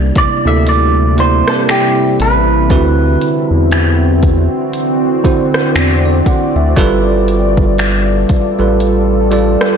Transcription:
Already playing: analog synth bass C2, tine electric piano C3 A#3 E4 D5, ambient pad C3 G3 D4 E4
0.16 analog synth bass D2, clean electric guitar D5, kick, closed hi-hat
0.45 analog synth bass D2, tine electric piano C3 A#3 E4 A4, clean electric guitar E5
0.67 ambient pad C4, clean electric guitar D5, closed hi-hat
1.17 tine electric piano C3 A#3 E4 D5, clean electric guitar C5, closed hi-hat
1.48 clean electric guitar A4, cross-stick
1.69 clean electric guitar G4, finger snap, closed hi-hat
2.20 analog synth bass A1, clean electric guitar B4, closed hi-hat
2.70 analog synth bass D2, tine electric piano D3 C4 E4 F#4 B4, ambient pad D3 C4 F#4 D5, kick, closed hi-hat
3.22 closed hi-hat
3.51 analog synth bass E2, clean electric guitar A4
3.72 finger snap, closed hi-hat
4.23 kick, closed hi-hat
4.73 closed hi-hat
5.24 tine electric piano D3 C4 E4 F#4 C5, kick, closed hi-hat
5.54 cross-stick
5.75 analog synth bass E2, finger snap, closed hi-hat
6.05 tine electric piano D5
6.26 tine electric piano F#5, kick, closed hi-hat
6.56 analog synth bass D2, tine electric piano E5
6.76 analog synth bass G1, tine electric piano G3 F4 A4 B4, ambient pad G3 F4 A4, kick, closed hi-hat
7.28 closed hi-hat
7.57 kick
7.78 finger snap, closed hi-hat
8.29 analog synth bass A1, kick, closed hi-hat
8.59 analog synth bass A1, tine electric piano G3 F4 A4 B4
8.80 closed hi-hat
9.31 tine electric piano G3 F4 A4 D5, closed hi-hat
9.61 cross-stick

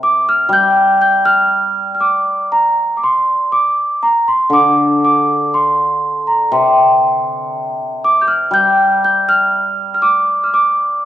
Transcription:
Already playing: hammered dulcimer C3
0.03 celesta D6
0.29 celesta F6
0.49 hammered dulcimer G3
0.53 celesta G6
1.02 celesta G6
1.25 celesta F6
1.95 celesta F6
2.00 celesta D6
2.52 celesta A#5
2.97 celesta D6
3.04 celesta C6
3.52 celesta D6
4.03 celesta A#5
4.28 celesta C6
4.50 hammered dulcimer D3, celesta D6
5.05 celesta D6
5.54 celesta C6
6.27 celesta A#5
6.52 hammered dulcimer C3, celesta C6
8.04 celesta D6
8.21 celesta G6
8.28 celesta F6
8.51 hammered dulcimer G3, celesta G6
9.05 celesta G6
9.29 celesta F6
9.94 celesta F6
10.02 celesta D6
10.44 celesta F6
10.54 celesta D6

